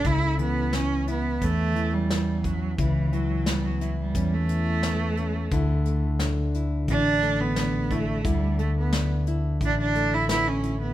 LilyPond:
<<
  \new Staff \with { instrumentName = "Nylon-string guitar" } { \time 4/4 \key a \mixolydian \tempo 4 = 88 << { cis'4 b8 e'8 cis'4 b8 cis'8 | e'4 b8 e'8 cis'4 b8 cis'8 | e'4 d'8 e'8 e'4 d'8 e'8 | e'4 d'8 e'8 e'4 b16 r16 e'8 | } \\ { cis8 e2 e4. | cis8 e2 e4. | d8 a2 a4. | d8 a2 a4. | } >> }
  \new Staff \with { instrumentName = "Cello" } { \time 4/4 \key a \mixolydian e'8 b8 cis'8 b8 a8. g8. fis8 | e8 fis8 g16 fis8 g8 a4.~ a16~ | a8. r4 r16 d'8. b8. a8 | g8 a16 b8 r8. d'16 d'8 e'16 e'16 cis'8 b16 | }
  \new Staff \with { instrumentName = "Fretless electric bass" } { \clef bass \time 4/4 \key a \mixolydian cis,2 e,2 | cis,2 e,2 | d,2 a,,2 | d,2 a,,2 | }
  \new DrumStaff \with { instrumentName = "Drums" } \drummode { \time 4/4 <hh bd>8 hh8 <hh sn>8 hh8 <hh bd>8 hh8 <hh sn>8 <hh bd>8 | <hh bd>8 hh8 <hh sn>8 hh8 <hh bd>8 hh8 <hh sn>8 hh8 | <hh bd>8 hh8 <hh sn>8 hh8 <hh bd>8 hh8 <hh sn>8 <hh bd>8 | <hh bd>8 hh8 <hh sn>8 hh8 <hh bd>8 hh8 <hh sn>8 hh8 | }
>>